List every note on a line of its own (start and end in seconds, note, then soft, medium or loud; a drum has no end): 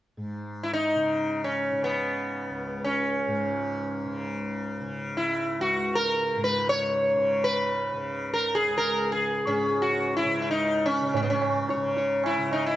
0.17 3.27 G#2 soft
0.63 0.72 E4 medium
0.73 1.40 D#4 medium
0.96 1.72 C#3 soft
1.44 1.84 C#4 medium
1.72 4.05 C#3 soft
1.84 2.84 B3 medium
2.50 5.60 C#2 medium
2.84 4.17 C#4 medium
3.27 6.36 G#2 medium
4.05 4.81 C#3 soft
4.81 7.15 C#3 medium
5.17 5.61 E4 medium
5.60 8.69 C#2 medium
5.60 5.96 F#4 medium
5.95 6.43 A#4 medium
6.36 9.46 G#2 medium
6.44 6.69 B4 medium
6.69 7.44 C#5 medium
7.15 7.92 C#3 medium
7.44 8.33 B4 medium
7.92 10.25 C#3 medium
8.34 8.56 A#4 medium
8.55 9.11 G#4 medium
8.69 12.76 C#2 medium
8.78 9.09 A#4 medium
9.12 9.77 G#4 medium
9.46 11.14 G#2 medium
9.46 10.84 C#4 medium
9.82 10.16 F#4 medium
10.17 10.40 E4 medium
10.25 11.02 C#3 medium
10.42 10.50 E4 medium
10.51 10.85 D#4 medium
10.86 11.15 C#4 medium
11.02 11.77 C#3 medium
11.14 12.76 G#2 medium
11.14 11.22 C#4 medium
11.14 tabla tin medium
11.14 tabla ge medium
11.23 11.29 B3 medium
11.30 11.94 C#4 medium
11.42 tabla na medium
11.69 11.95 C#5 soft
11.69 tabla te medium
11.77 12.39 C#3 medium
11.97 12.23 C#5 soft
11.97 tabla te medium
12.24 12.52 E4 medium
12.24 tabla na medium
12.39 12.76 C#3 medium
12.52 12.65 D#4 medium
12.52 tabla na medium
12.66 12.76 E4 medium